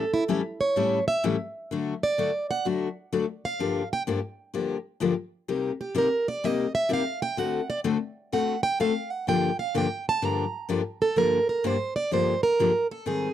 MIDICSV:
0, 0, Header, 1, 3, 480
1, 0, Start_track
1, 0, Key_signature, -2, "minor"
1, 0, Tempo, 473186
1, 1733, Time_signature, 4, 2, 24, 8
1, 13527, End_track
2, 0, Start_track
2, 0, Title_t, "Steel-string acoustic guitar"
2, 0, Program_c, 0, 25
2, 0, Note_on_c, 0, 69, 82
2, 112, Note_off_c, 0, 69, 0
2, 137, Note_on_c, 0, 64, 97
2, 236, Note_off_c, 0, 64, 0
2, 614, Note_on_c, 0, 73, 90
2, 1053, Note_off_c, 0, 73, 0
2, 1093, Note_on_c, 0, 76, 102
2, 1255, Note_off_c, 0, 76, 0
2, 2062, Note_on_c, 0, 74, 92
2, 2497, Note_off_c, 0, 74, 0
2, 2542, Note_on_c, 0, 78, 104
2, 2700, Note_off_c, 0, 78, 0
2, 3501, Note_on_c, 0, 77, 90
2, 3935, Note_off_c, 0, 77, 0
2, 3986, Note_on_c, 0, 79, 97
2, 4082, Note_off_c, 0, 79, 0
2, 5890, Note_on_c, 0, 67, 79
2, 6052, Note_off_c, 0, 67, 0
2, 6068, Note_on_c, 0, 70, 82
2, 6354, Note_off_c, 0, 70, 0
2, 6373, Note_on_c, 0, 74, 98
2, 6543, Note_off_c, 0, 74, 0
2, 6543, Note_on_c, 0, 75, 93
2, 6832, Note_off_c, 0, 75, 0
2, 6845, Note_on_c, 0, 76, 100
2, 7009, Note_off_c, 0, 76, 0
2, 7033, Note_on_c, 0, 77, 92
2, 7317, Note_off_c, 0, 77, 0
2, 7326, Note_on_c, 0, 79, 114
2, 7493, Note_off_c, 0, 79, 0
2, 7493, Note_on_c, 0, 78, 90
2, 7786, Note_off_c, 0, 78, 0
2, 7807, Note_on_c, 0, 74, 102
2, 7908, Note_off_c, 0, 74, 0
2, 8454, Note_on_c, 0, 78, 85
2, 8746, Note_off_c, 0, 78, 0
2, 8756, Note_on_c, 0, 79, 108
2, 8924, Note_off_c, 0, 79, 0
2, 8935, Note_on_c, 0, 77, 81
2, 9244, Note_off_c, 0, 77, 0
2, 9244, Note_on_c, 0, 78, 99
2, 9408, Note_off_c, 0, 78, 0
2, 9420, Note_on_c, 0, 79, 98
2, 9709, Note_off_c, 0, 79, 0
2, 9730, Note_on_c, 0, 77, 92
2, 9891, Note_off_c, 0, 77, 0
2, 9917, Note_on_c, 0, 79, 93
2, 10198, Note_off_c, 0, 79, 0
2, 10234, Note_on_c, 0, 81, 99
2, 10409, Note_off_c, 0, 81, 0
2, 10409, Note_on_c, 0, 82, 94
2, 11176, Note_on_c, 0, 69, 88
2, 11260, Note_off_c, 0, 82, 0
2, 11327, Note_off_c, 0, 69, 0
2, 11340, Note_on_c, 0, 70, 94
2, 11645, Note_off_c, 0, 70, 0
2, 11657, Note_on_c, 0, 70, 80
2, 11824, Note_off_c, 0, 70, 0
2, 11834, Note_on_c, 0, 72, 88
2, 12127, Note_off_c, 0, 72, 0
2, 12131, Note_on_c, 0, 74, 92
2, 12285, Note_off_c, 0, 74, 0
2, 12310, Note_on_c, 0, 72, 88
2, 12607, Note_off_c, 0, 72, 0
2, 12611, Note_on_c, 0, 70, 88
2, 13049, Note_off_c, 0, 70, 0
2, 13100, Note_on_c, 0, 69, 81
2, 13250, Note_off_c, 0, 69, 0
2, 13264, Note_on_c, 0, 68, 86
2, 13527, Note_off_c, 0, 68, 0
2, 13527, End_track
3, 0, Start_track
3, 0, Title_t, "Steel-string acoustic guitar"
3, 0, Program_c, 1, 25
3, 287, Note_on_c, 1, 45, 81
3, 292, Note_on_c, 1, 52, 80
3, 292, Note_on_c, 1, 55, 88
3, 297, Note_on_c, 1, 61, 84
3, 297, Note_on_c, 1, 64, 90
3, 301, Note_on_c, 1, 69, 97
3, 406, Note_off_c, 1, 45, 0
3, 408, Note_off_c, 1, 52, 0
3, 408, Note_off_c, 1, 55, 0
3, 410, Note_off_c, 1, 61, 0
3, 411, Note_off_c, 1, 64, 0
3, 413, Note_off_c, 1, 69, 0
3, 771, Note_on_c, 1, 45, 72
3, 775, Note_on_c, 1, 52, 66
3, 779, Note_on_c, 1, 55, 72
3, 780, Note_on_c, 1, 61, 68
3, 782, Note_on_c, 1, 69, 78
3, 785, Note_on_c, 1, 64, 78
3, 991, Note_off_c, 1, 45, 0
3, 993, Note_off_c, 1, 52, 0
3, 995, Note_off_c, 1, 55, 0
3, 996, Note_off_c, 1, 61, 0
3, 996, Note_off_c, 1, 69, 0
3, 998, Note_off_c, 1, 64, 0
3, 1254, Note_on_c, 1, 45, 91
3, 1255, Note_on_c, 1, 52, 92
3, 1259, Note_on_c, 1, 61, 91
3, 1259, Note_on_c, 1, 64, 97
3, 1260, Note_on_c, 1, 55, 85
3, 1264, Note_on_c, 1, 69, 92
3, 1369, Note_off_c, 1, 45, 0
3, 1370, Note_off_c, 1, 52, 0
3, 1372, Note_off_c, 1, 55, 0
3, 1372, Note_off_c, 1, 61, 0
3, 1372, Note_off_c, 1, 64, 0
3, 1374, Note_off_c, 1, 69, 0
3, 1734, Note_on_c, 1, 50, 65
3, 1746, Note_on_c, 1, 54, 69
3, 1747, Note_on_c, 1, 57, 72
3, 1748, Note_on_c, 1, 62, 72
3, 1751, Note_on_c, 1, 66, 77
3, 1953, Note_off_c, 1, 50, 0
3, 1959, Note_off_c, 1, 54, 0
3, 1959, Note_off_c, 1, 57, 0
3, 1959, Note_off_c, 1, 62, 0
3, 1961, Note_off_c, 1, 66, 0
3, 2211, Note_on_c, 1, 50, 76
3, 2220, Note_on_c, 1, 54, 81
3, 2220, Note_on_c, 1, 62, 88
3, 2221, Note_on_c, 1, 57, 81
3, 2222, Note_on_c, 1, 66, 88
3, 2328, Note_off_c, 1, 50, 0
3, 2332, Note_off_c, 1, 54, 0
3, 2332, Note_off_c, 1, 57, 0
3, 2332, Note_off_c, 1, 62, 0
3, 2333, Note_off_c, 1, 66, 0
3, 2689, Note_on_c, 1, 50, 63
3, 2694, Note_on_c, 1, 54, 68
3, 2697, Note_on_c, 1, 57, 67
3, 2702, Note_on_c, 1, 66, 65
3, 2706, Note_on_c, 1, 62, 70
3, 2910, Note_off_c, 1, 50, 0
3, 2912, Note_off_c, 1, 54, 0
3, 2914, Note_off_c, 1, 57, 0
3, 2916, Note_off_c, 1, 66, 0
3, 2918, Note_off_c, 1, 62, 0
3, 3170, Note_on_c, 1, 50, 82
3, 3171, Note_on_c, 1, 54, 90
3, 3177, Note_on_c, 1, 57, 86
3, 3178, Note_on_c, 1, 62, 83
3, 3182, Note_on_c, 1, 66, 92
3, 3287, Note_off_c, 1, 50, 0
3, 3287, Note_off_c, 1, 54, 0
3, 3291, Note_off_c, 1, 57, 0
3, 3291, Note_off_c, 1, 62, 0
3, 3293, Note_off_c, 1, 66, 0
3, 3645, Note_on_c, 1, 43, 63
3, 3653, Note_on_c, 1, 50, 62
3, 3654, Note_on_c, 1, 58, 74
3, 3655, Note_on_c, 1, 53, 70
3, 3656, Note_on_c, 1, 62, 77
3, 3660, Note_on_c, 1, 67, 71
3, 3867, Note_off_c, 1, 43, 0
3, 3871, Note_off_c, 1, 50, 0
3, 3872, Note_off_c, 1, 53, 0
3, 3872, Note_off_c, 1, 58, 0
3, 3873, Note_off_c, 1, 62, 0
3, 3875, Note_off_c, 1, 67, 0
3, 4129, Note_on_c, 1, 43, 84
3, 4132, Note_on_c, 1, 50, 76
3, 4136, Note_on_c, 1, 53, 87
3, 4136, Note_on_c, 1, 58, 85
3, 4136, Note_on_c, 1, 62, 80
3, 4145, Note_on_c, 1, 67, 93
3, 4246, Note_off_c, 1, 43, 0
3, 4247, Note_off_c, 1, 50, 0
3, 4249, Note_off_c, 1, 58, 0
3, 4249, Note_off_c, 1, 62, 0
3, 4250, Note_off_c, 1, 53, 0
3, 4254, Note_off_c, 1, 67, 0
3, 4601, Note_on_c, 1, 43, 66
3, 4602, Note_on_c, 1, 50, 67
3, 4609, Note_on_c, 1, 53, 71
3, 4611, Note_on_c, 1, 58, 68
3, 4612, Note_on_c, 1, 62, 67
3, 4614, Note_on_c, 1, 67, 72
3, 4825, Note_off_c, 1, 43, 0
3, 4825, Note_off_c, 1, 50, 0
3, 4829, Note_off_c, 1, 53, 0
3, 4830, Note_off_c, 1, 58, 0
3, 4830, Note_off_c, 1, 62, 0
3, 4831, Note_off_c, 1, 67, 0
3, 5074, Note_on_c, 1, 43, 93
3, 5080, Note_on_c, 1, 50, 79
3, 5083, Note_on_c, 1, 53, 93
3, 5088, Note_on_c, 1, 58, 90
3, 5092, Note_on_c, 1, 62, 87
3, 5093, Note_on_c, 1, 67, 88
3, 5198, Note_off_c, 1, 43, 0
3, 5201, Note_off_c, 1, 50, 0
3, 5203, Note_off_c, 1, 53, 0
3, 5205, Note_off_c, 1, 58, 0
3, 5207, Note_off_c, 1, 62, 0
3, 5208, Note_off_c, 1, 67, 0
3, 5563, Note_on_c, 1, 48, 67
3, 5565, Note_on_c, 1, 55, 64
3, 5568, Note_on_c, 1, 63, 68
3, 5568, Note_on_c, 1, 67, 83
3, 5569, Note_on_c, 1, 58, 66
3, 5785, Note_off_c, 1, 48, 0
3, 5787, Note_off_c, 1, 55, 0
3, 5788, Note_off_c, 1, 58, 0
3, 5788, Note_off_c, 1, 63, 0
3, 5788, Note_off_c, 1, 67, 0
3, 6031, Note_on_c, 1, 48, 87
3, 6032, Note_on_c, 1, 55, 86
3, 6039, Note_on_c, 1, 58, 98
3, 6042, Note_on_c, 1, 63, 82
3, 6042, Note_on_c, 1, 67, 92
3, 6156, Note_off_c, 1, 48, 0
3, 6157, Note_off_c, 1, 55, 0
3, 6160, Note_off_c, 1, 58, 0
3, 6162, Note_off_c, 1, 63, 0
3, 6162, Note_off_c, 1, 67, 0
3, 6529, Note_on_c, 1, 48, 70
3, 6534, Note_on_c, 1, 55, 69
3, 6534, Note_on_c, 1, 58, 81
3, 6535, Note_on_c, 1, 63, 66
3, 6541, Note_on_c, 1, 67, 75
3, 6748, Note_off_c, 1, 48, 0
3, 6750, Note_off_c, 1, 58, 0
3, 6751, Note_off_c, 1, 55, 0
3, 6751, Note_off_c, 1, 63, 0
3, 6754, Note_off_c, 1, 67, 0
3, 6988, Note_on_c, 1, 48, 88
3, 6994, Note_on_c, 1, 55, 89
3, 6996, Note_on_c, 1, 58, 95
3, 7003, Note_on_c, 1, 63, 92
3, 7010, Note_on_c, 1, 67, 87
3, 7114, Note_off_c, 1, 48, 0
3, 7117, Note_off_c, 1, 55, 0
3, 7118, Note_off_c, 1, 58, 0
3, 7122, Note_off_c, 1, 63, 0
3, 7125, Note_off_c, 1, 67, 0
3, 7478, Note_on_c, 1, 50, 69
3, 7486, Note_on_c, 1, 60, 67
3, 7486, Note_on_c, 1, 66, 77
3, 7488, Note_on_c, 1, 57, 72
3, 7494, Note_on_c, 1, 69, 76
3, 7702, Note_off_c, 1, 50, 0
3, 7706, Note_off_c, 1, 60, 0
3, 7706, Note_off_c, 1, 66, 0
3, 7707, Note_off_c, 1, 57, 0
3, 7710, Note_off_c, 1, 69, 0
3, 7954, Note_on_c, 1, 50, 88
3, 7957, Note_on_c, 1, 57, 91
3, 7958, Note_on_c, 1, 60, 99
3, 7966, Note_on_c, 1, 66, 95
3, 7967, Note_on_c, 1, 69, 95
3, 8077, Note_off_c, 1, 50, 0
3, 8079, Note_off_c, 1, 57, 0
3, 8079, Note_off_c, 1, 60, 0
3, 8083, Note_off_c, 1, 66, 0
3, 8083, Note_off_c, 1, 69, 0
3, 8444, Note_on_c, 1, 50, 69
3, 8447, Note_on_c, 1, 57, 70
3, 8449, Note_on_c, 1, 66, 75
3, 8450, Note_on_c, 1, 60, 76
3, 8458, Note_on_c, 1, 69, 75
3, 8665, Note_off_c, 1, 50, 0
3, 8667, Note_off_c, 1, 57, 0
3, 8668, Note_off_c, 1, 60, 0
3, 8668, Note_off_c, 1, 66, 0
3, 8672, Note_off_c, 1, 69, 0
3, 8923, Note_on_c, 1, 50, 95
3, 8927, Note_on_c, 1, 57, 93
3, 8930, Note_on_c, 1, 60, 90
3, 8932, Note_on_c, 1, 69, 93
3, 8934, Note_on_c, 1, 66, 95
3, 9041, Note_off_c, 1, 50, 0
3, 9043, Note_off_c, 1, 57, 0
3, 9045, Note_off_c, 1, 60, 0
3, 9045, Note_off_c, 1, 69, 0
3, 9047, Note_off_c, 1, 66, 0
3, 9404, Note_on_c, 1, 43, 69
3, 9414, Note_on_c, 1, 50, 71
3, 9417, Note_on_c, 1, 58, 74
3, 9418, Note_on_c, 1, 53, 75
3, 9418, Note_on_c, 1, 62, 72
3, 9421, Note_on_c, 1, 67, 80
3, 9625, Note_off_c, 1, 43, 0
3, 9629, Note_off_c, 1, 50, 0
3, 9631, Note_off_c, 1, 58, 0
3, 9632, Note_off_c, 1, 53, 0
3, 9632, Note_off_c, 1, 62, 0
3, 9633, Note_off_c, 1, 67, 0
3, 9885, Note_on_c, 1, 50, 89
3, 9890, Note_on_c, 1, 43, 91
3, 9892, Note_on_c, 1, 58, 81
3, 9893, Note_on_c, 1, 53, 94
3, 9899, Note_on_c, 1, 62, 90
3, 9904, Note_on_c, 1, 67, 97
3, 10002, Note_off_c, 1, 50, 0
3, 10004, Note_off_c, 1, 43, 0
3, 10005, Note_off_c, 1, 58, 0
3, 10006, Note_off_c, 1, 53, 0
3, 10009, Note_off_c, 1, 62, 0
3, 10011, Note_off_c, 1, 67, 0
3, 10368, Note_on_c, 1, 43, 74
3, 10372, Note_on_c, 1, 50, 65
3, 10372, Note_on_c, 1, 58, 78
3, 10373, Note_on_c, 1, 53, 77
3, 10379, Note_on_c, 1, 62, 71
3, 10381, Note_on_c, 1, 67, 88
3, 10586, Note_off_c, 1, 43, 0
3, 10588, Note_off_c, 1, 50, 0
3, 10589, Note_off_c, 1, 53, 0
3, 10589, Note_off_c, 1, 58, 0
3, 10592, Note_off_c, 1, 62, 0
3, 10593, Note_off_c, 1, 67, 0
3, 10840, Note_on_c, 1, 43, 83
3, 10844, Note_on_c, 1, 50, 87
3, 10849, Note_on_c, 1, 53, 90
3, 10851, Note_on_c, 1, 58, 93
3, 10851, Note_on_c, 1, 62, 94
3, 10854, Note_on_c, 1, 67, 95
3, 10959, Note_off_c, 1, 43, 0
3, 10962, Note_off_c, 1, 50, 0
3, 10964, Note_off_c, 1, 53, 0
3, 10965, Note_off_c, 1, 58, 0
3, 10965, Note_off_c, 1, 62, 0
3, 10966, Note_off_c, 1, 67, 0
3, 11322, Note_on_c, 1, 43, 64
3, 11324, Note_on_c, 1, 50, 58
3, 11324, Note_on_c, 1, 53, 75
3, 11331, Note_on_c, 1, 58, 68
3, 11331, Note_on_c, 1, 62, 70
3, 11333, Note_on_c, 1, 67, 62
3, 11544, Note_off_c, 1, 43, 0
3, 11544, Note_off_c, 1, 53, 0
3, 11545, Note_off_c, 1, 50, 0
3, 11548, Note_off_c, 1, 58, 0
3, 11548, Note_off_c, 1, 62, 0
3, 11549, Note_off_c, 1, 67, 0
3, 11808, Note_on_c, 1, 43, 79
3, 11808, Note_on_c, 1, 53, 80
3, 11810, Note_on_c, 1, 50, 78
3, 11811, Note_on_c, 1, 58, 83
3, 11812, Note_on_c, 1, 62, 85
3, 11818, Note_on_c, 1, 67, 88
3, 11923, Note_off_c, 1, 53, 0
3, 11924, Note_off_c, 1, 43, 0
3, 11925, Note_off_c, 1, 50, 0
3, 11925, Note_off_c, 1, 58, 0
3, 11926, Note_off_c, 1, 62, 0
3, 11928, Note_off_c, 1, 67, 0
3, 12289, Note_on_c, 1, 43, 64
3, 12293, Note_on_c, 1, 53, 65
3, 12294, Note_on_c, 1, 50, 63
3, 12299, Note_on_c, 1, 58, 69
3, 12304, Note_on_c, 1, 62, 74
3, 12304, Note_on_c, 1, 67, 71
3, 12507, Note_off_c, 1, 43, 0
3, 12509, Note_off_c, 1, 53, 0
3, 12510, Note_off_c, 1, 50, 0
3, 12512, Note_off_c, 1, 58, 0
3, 12515, Note_off_c, 1, 62, 0
3, 12515, Note_off_c, 1, 67, 0
3, 12776, Note_on_c, 1, 43, 77
3, 12782, Note_on_c, 1, 50, 87
3, 12783, Note_on_c, 1, 53, 86
3, 12784, Note_on_c, 1, 58, 91
3, 12792, Note_on_c, 1, 62, 85
3, 12792, Note_on_c, 1, 67, 81
3, 12888, Note_off_c, 1, 43, 0
3, 12891, Note_off_c, 1, 50, 0
3, 12891, Note_off_c, 1, 53, 0
3, 12891, Note_off_c, 1, 58, 0
3, 12895, Note_off_c, 1, 67, 0
3, 12896, Note_off_c, 1, 62, 0
3, 13245, Note_on_c, 1, 44, 63
3, 13248, Note_on_c, 1, 51, 71
3, 13252, Note_on_c, 1, 55, 63
3, 13253, Note_on_c, 1, 60, 76
3, 13260, Note_on_c, 1, 63, 72
3, 13260, Note_on_c, 1, 68, 69
3, 13465, Note_off_c, 1, 44, 0
3, 13467, Note_off_c, 1, 51, 0
3, 13469, Note_off_c, 1, 55, 0
3, 13469, Note_off_c, 1, 60, 0
3, 13473, Note_off_c, 1, 63, 0
3, 13473, Note_off_c, 1, 68, 0
3, 13527, End_track
0, 0, End_of_file